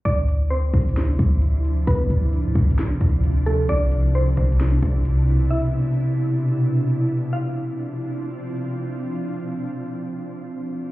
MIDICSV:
0, 0, Header, 1, 5, 480
1, 0, Start_track
1, 0, Tempo, 454545
1, 58, Time_signature, 4, 2, 24, 8
1, 11530, End_track
2, 0, Start_track
2, 0, Title_t, "Synth pluck"
2, 0, Program_c, 0, 84
2, 54, Note_on_c, 0, 74, 114
2, 507, Note_off_c, 0, 74, 0
2, 532, Note_on_c, 0, 72, 88
2, 986, Note_off_c, 0, 72, 0
2, 1977, Note_on_c, 0, 71, 111
2, 3615, Note_off_c, 0, 71, 0
2, 3657, Note_on_c, 0, 69, 80
2, 3885, Note_off_c, 0, 69, 0
2, 3898, Note_on_c, 0, 74, 107
2, 4349, Note_off_c, 0, 74, 0
2, 4382, Note_on_c, 0, 72, 81
2, 4831, Note_off_c, 0, 72, 0
2, 5813, Note_on_c, 0, 76, 104
2, 6733, Note_off_c, 0, 76, 0
2, 7738, Note_on_c, 0, 77, 82
2, 9136, Note_off_c, 0, 77, 0
2, 11530, End_track
3, 0, Start_track
3, 0, Title_t, "Ambient pad"
3, 0, Program_c, 1, 92
3, 57, Note_on_c, 1, 64, 88
3, 58, Note_on_c, 1, 48, 78
3, 58, Note_on_c, 1, 53, 73
3, 58, Note_on_c, 1, 62, 71
3, 1958, Note_off_c, 1, 64, 0
3, 1978, Note_on_c, 1, 65, 85
3, 3859, Note_off_c, 1, 53, 0
3, 3879, Note_off_c, 1, 65, 0
3, 3897, Note_on_c, 1, 64, 86
3, 3898, Note_on_c, 1, 47, 76
3, 7696, Note_off_c, 1, 48, 0
3, 7696, Note_off_c, 1, 62, 0
3, 7699, Note_off_c, 1, 47, 0
3, 7699, Note_off_c, 1, 64, 0
3, 7737, Note_on_c, 1, 53, 77
3, 7737, Note_on_c, 1, 60, 76
3, 7737, Note_on_c, 1, 62, 72
3, 7737, Note_on_c, 1, 65, 87
3, 11530, Note_off_c, 1, 53, 0
3, 11530, Note_off_c, 1, 60, 0
3, 11530, Note_off_c, 1, 62, 0
3, 11530, Note_off_c, 1, 65, 0
3, 11530, End_track
4, 0, Start_track
4, 0, Title_t, "808-style bass"
4, 0, Program_c, 2, 38
4, 59, Note_on_c, 2, 38, 109
4, 749, Note_off_c, 2, 38, 0
4, 777, Note_on_c, 2, 38, 104
4, 1238, Note_off_c, 2, 38, 0
4, 1257, Note_on_c, 2, 38, 108
4, 1949, Note_off_c, 2, 38, 0
4, 1978, Note_on_c, 2, 38, 108
4, 2209, Note_off_c, 2, 38, 0
4, 2217, Note_on_c, 2, 38, 106
4, 2577, Note_on_c, 2, 45, 99
4, 2593, Note_off_c, 2, 38, 0
4, 2692, Note_off_c, 2, 45, 0
4, 2697, Note_on_c, 2, 38, 105
4, 2928, Note_off_c, 2, 38, 0
4, 3177, Note_on_c, 2, 38, 104
4, 3869, Note_off_c, 2, 38, 0
4, 3897, Note_on_c, 2, 36, 115
4, 4589, Note_off_c, 2, 36, 0
4, 4617, Note_on_c, 2, 36, 100
4, 5078, Note_off_c, 2, 36, 0
4, 5096, Note_on_c, 2, 36, 109
4, 5788, Note_off_c, 2, 36, 0
4, 11530, End_track
5, 0, Start_track
5, 0, Title_t, "Drums"
5, 58, Note_on_c, 9, 36, 117
5, 58, Note_on_c, 9, 42, 74
5, 164, Note_off_c, 9, 36, 0
5, 164, Note_off_c, 9, 42, 0
5, 296, Note_on_c, 9, 42, 72
5, 402, Note_off_c, 9, 42, 0
5, 538, Note_on_c, 9, 42, 72
5, 643, Note_off_c, 9, 42, 0
5, 777, Note_on_c, 9, 36, 95
5, 777, Note_on_c, 9, 42, 40
5, 858, Note_off_c, 9, 42, 0
5, 858, Note_on_c, 9, 42, 54
5, 883, Note_off_c, 9, 36, 0
5, 939, Note_off_c, 9, 42, 0
5, 939, Note_on_c, 9, 42, 68
5, 1018, Note_off_c, 9, 42, 0
5, 1018, Note_on_c, 9, 42, 71
5, 1027, Note_on_c, 9, 38, 115
5, 1124, Note_off_c, 9, 42, 0
5, 1133, Note_off_c, 9, 38, 0
5, 1257, Note_on_c, 9, 36, 91
5, 1260, Note_on_c, 9, 42, 79
5, 1363, Note_off_c, 9, 36, 0
5, 1366, Note_off_c, 9, 42, 0
5, 1496, Note_on_c, 9, 42, 79
5, 1602, Note_off_c, 9, 42, 0
5, 1739, Note_on_c, 9, 42, 64
5, 1845, Note_off_c, 9, 42, 0
5, 1978, Note_on_c, 9, 36, 119
5, 1978, Note_on_c, 9, 42, 73
5, 2083, Note_off_c, 9, 42, 0
5, 2084, Note_off_c, 9, 36, 0
5, 2217, Note_on_c, 9, 42, 73
5, 2323, Note_off_c, 9, 42, 0
5, 2459, Note_on_c, 9, 42, 72
5, 2564, Note_off_c, 9, 42, 0
5, 2697, Note_on_c, 9, 36, 97
5, 2699, Note_on_c, 9, 42, 41
5, 2779, Note_off_c, 9, 42, 0
5, 2779, Note_on_c, 9, 42, 54
5, 2803, Note_off_c, 9, 36, 0
5, 2858, Note_off_c, 9, 42, 0
5, 2858, Note_on_c, 9, 42, 66
5, 2936, Note_off_c, 9, 42, 0
5, 2936, Note_on_c, 9, 42, 68
5, 2946, Note_on_c, 9, 38, 114
5, 3042, Note_off_c, 9, 42, 0
5, 3052, Note_off_c, 9, 38, 0
5, 3177, Note_on_c, 9, 36, 92
5, 3179, Note_on_c, 9, 42, 79
5, 3283, Note_off_c, 9, 36, 0
5, 3284, Note_off_c, 9, 42, 0
5, 3417, Note_on_c, 9, 42, 78
5, 3523, Note_off_c, 9, 42, 0
5, 3659, Note_on_c, 9, 42, 62
5, 3764, Note_off_c, 9, 42, 0
5, 3896, Note_on_c, 9, 42, 72
5, 3897, Note_on_c, 9, 36, 115
5, 4002, Note_off_c, 9, 42, 0
5, 4003, Note_off_c, 9, 36, 0
5, 4135, Note_on_c, 9, 42, 74
5, 4241, Note_off_c, 9, 42, 0
5, 4378, Note_on_c, 9, 42, 74
5, 4483, Note_off_c, 9, 42, 0
5, 4616, Note_on_c, 9, 36, 99
5, 4617, Note_on_c, 9, 42, 41
5, 4697, Note_off_c, 9, 42, 0
5, 4697, Note_on_c, 9, 42, 54
5, 4722, Note_off_c, 9, 36, 0
5, 4777, Note_off_c, 9, 42, 0
5, 4777, Note_on_c, 9, 42, 65
5, 4856, Note_off_c, 9, 42, 0
5, 4856, Note_on_c, 9, 42, 71
5, 4865, Note_on_c, 9, 38, 115
5, 4961, Note_off_c, 9, 42, 0
5, 4971, Note_off_c, 9, 38, 0
5, 5096, Note_on_c, 9, 36, 91
5, 5097, Note_on_c, 9, 42, 78
5, 5202, Note_off_c, 9, 36, 0
5, 5203, Note_off_c, 9, 42, 0
5, 5335, Note_on_c, 9, 42, 80
5, 5440, Note_off_c, 9, 42, 0
5, 5577, Note_on_c, 9, 42, 60
5, 5682, Note_off_c, 9, 42, 0
5, 11530, End_track
0, 0, End_of_file